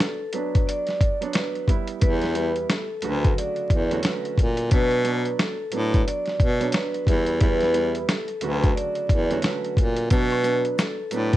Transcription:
Already playing: grand piano F#3 B3 D4
0.00 vibraphone A4, snare, closed hi-hat
0.32 grand piano F#3 B3 D4, vibraphone B4, closed hi-hat
0.55 kick, closed hi-hat
0.67 vibraphone D5, closed hi-hat
0.86 snare, closed hi-hat
1.00 kick, closed hi-hat
1.21 grand piano F#3 B3 D4, vibraphone C#5, closed hi-hat
1.33 vibraphone B4, snare, closed hi-hat
1.55 closed hi-hat
1.67 grand piano G3 B3 E4, kick, closed hi-hat
1.88 closed hi-hat
2.00 baritone saxophone E2, grand piano G3 B3 E4, vibraphone B4, kick, closed hi-hat
2.22 snare, closed hi-hat
2.33 grand piano G3 B3 E4, closed hi-hat
2.56 closed hi-hat
2.70 vibraphone A4, snare, closed hi-hat
3.02 baritone saxophone D2, grand piano C#3 D3 F#3 A3 F#4, vibraphone B4, closed hi-hat
3.25 kick, closed hi-hat
3.37 vibraphone D5, closed hi-hat
3.56 closed hi-hat
3.70 baritone saxophone E2, kick, closed hi-hat
3.91 grand piano D3 F#3 A3 C#4 F#4, vibraphone C#5, closed hi-hat
4.03 vibraphone B4, snare, closed hi-hat
4.25 closed hi-hat
4.37 baritone saxophone A#2, kick, closed hi-hat
4.57 closed hi-hat
4.70 baritone saxophone B2, grand piano F#3 B3 D4, vibraphone B4, kick, closed hi-hat
4.91 closed hi-hat
5.04 grand piano F#3 B3 D4, closed hi-hat
5.25 closed hi-hat
5.39 vibraphone A4, snare, closed hi-hat
5.72 baritone saxophone A2, grand piano F#3 B3 D4, vibraphone B4, closed hi-hat
5.94 kick, closed hi-hat
6.07 vibraphone D5, closed hi-hat
6.26 snare, closed hi-hat
6.40 baritone saxophone B2, kick, closed hi-hat
6.60 grand piano F#3 B3 D4, vibraphone C#5, closed hi-hat
6.72 vibraphone B4, snare, closed hi-hat
6.95 closed hi-hat
7.06 baritone saxophone E2, grand piano G3 B3 E4, kick, closed hi-hat
7.27 closed hi-hat
7.40 baritone saxophone E2, grand piano G3 B3 E4, vibraphone B4, kick, closed hi-hat
7.61 snare, closed hi-hat
7.73 grand piano G3 B3 E4, closed hi-hat
7.95 closed hi-hat
8.08 vibraphone A4, snare, closed hi-hat
8.28 closed hi-hat
8.41 baritone saxophone D2, grand piano C#3 D3 F#3 A3 F#4, vibraphone B4, closed hi-hat
8.64 kick, closed hi-hat
8.76 vibraphone D5, closed hi-hat
8.95 closed hi-hat
9.09 baritone saxophone E2, kick, closed hi-hat
9.30 grand piano D3 F#3 A3 C#4 F#4, vibraphone C#5, closed hi-hat
9.42 vibraphone B4, snare, closed hi-hat
9.64 closed hi-hat
9.77 baritone saxophone A#2, kick, closed hi-hat
9.96 closed hi-hat
10.09 baritone saxophone B2, grand piano F#3 B3 D4, vibraphone B4, kick, closed hi-hat, maracas
10.30 closed hi-hat, high woodblock
10.43 grand piano F#3 B3 D4, closed hi-hat, maracas
10.65 closed hi-hat
10.78 vibraphone A4, snare, closed hi-hat, maracas
11.11 baritone saxophone A2, grand piano F#3 B3 D4, vibraphone B4, closed hi-hat, maracas
11.33 kick, closed hi-hat

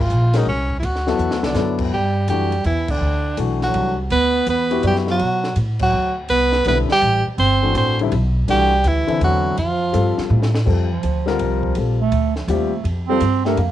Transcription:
0.01 tenor saxophone F4
0.10 upright bass A#1, hi-hat pedal
0.34 grand piano G#3 C#4 F#4 A#4, tenor saxophone D#4, snare, ride
0.46 upright bass C2, tenor saxophone C#4
0.70 kick
0.79 upright bass D2, tenor saxophone E4, ride
0.85 tenor saxophone F#4
0.96 snare
1.07 grand piano F#3 B3 E4 A4, snare
1.18 upright bass E2, hi-hat pedal
1.30 upright bass D2, snare
1.43 upright bass C2, bass clarinet D3, tenor saxophone D4, snare
1.54 upright bass F#2, grand piano F#3 B3 E4 A4, snare, hi-hat pedal
1.78 kick, crash
1.91 upright bass G2, bass clarinet G3, tenor saxophone G4
2.28 upright bass F#2, grand piano E3 A3 D4 F#4, bass clarinet G3, tenor saxophone G4, hi-hat pedal, ride
2.52 ride
2.64 upright bass E2, bass clarinet E3, tenor saxophone E4, ride
2.88 bass clarinet D3, tenor saxophone D4, kick, crash
3.00 upright bass D2
3.37 upright bass B1, grand piano E3 A3 D4 F#4, hi-hat pedal, ride
3.61 bass clarinet F#3, tenor saxophone F#4, snare
3.74 upright bass C2, ride
4.10 upright bass D2, bass clarinet B3, tenor saxophone B4, ride
4.47 upright bass E2, bass clarinet B3, tenor saxophone B4, hi-hat pedal, ride
4.71 grand piano B3 E4 F#4 G4, ride
4.83 upright bass F#2, bass clarinet G3, tenor saxophone G4, ride
4.96 snare
5.07 bass clarinet F#3, snare
5.12 tenor saxophone F#4
5.19 upright bass B2, ride
5.44 snare
5.56 upright bass A2, hi-hat pedal, ride
5.79 bass clarinet F#3, tenor saxophone F#4, kick, crash
5.93 upright bass D2
6.29 upright bass C2, bass clarinet B3, tenor saxophone B4, ride
6.52 snare
6.64 upright bass B1, grand piano D3 G3 C4 E4, bass clarinet B3, tenor saxophone B4, hi-hat pedal, ride
6.89 bass clarinet G3, tenor saxophone G4, muted upright bass stroke, snare
7.01 upright bass A1, ride
7.27 muted upright bass stroke
7.38 upright bass G1, bass clarinet C4, tenor saxophone C5, ride
7.62 grand piano E3 A3 D4 F#4
7.75 upright bass A1, bass clarinet C4, tenor saxophone C5, hi-hat pedal, ride
7.99 grand piano D3 G3 C4 E4, ride
8.12 upright bass B1, ride
8.48 upright bass C2, grand piano E3 A3 D4 F#4, bass clarinet G3, tenor saxophone G4, ride
8.84 upright bass D2, bass clarinet E3, tenor saxophone E4, hi-hat pedal, ride
9.07 grand piano D3 E3 C4 E4, muted upright bass stroke, ride
9.21 upright bass E2, bass clarinet F#3, tenor saxophone F#4, ride
9.57 upright bass F2, bass clarinet F3, tenor saxophone F4, ride
9.93 upright bass G2, grand piano G3 C4 F4 A4, hi-hat pedal, ride
10.18 muted upright bass stroke, snare
10.30 upright bass A2
10.42 snare
10.54 snare
10.66 upright bass F2, grand piano G3 C4 F4 A4, kick, crash
10.90 bass clarinet F3
11.03 upright bass D2, hi-hat pedal, ride
11.26 bass clarinet D3, grand piano G3 C4 F4 A#4, snare
11.39 upright bass C2, bass clarinet F3, ride
11.63 kick
11.75 upright bass A#1, grand piano G3 C4 F4 A4, ride
12.01 bass clarinet A3
12.11 upright bass D2, ride
12.36 bass clarinet F3, snare
12.48 upright bass D#2, grand piano G3 C4 F4 G4, bass clarinet A3, hi-hat pedal, ride
12.84 upright bass F2, ride
13.08 grand piano G3 C4 F4 A4, bass clarinet C4
13.21 upright bass G2, hi-hat pedal, ride
13.45 grand piano A3 D4 G4 A#4, bass clarinet A3, snare
13.57 upright bass F2, bass clarinet A#3, ride

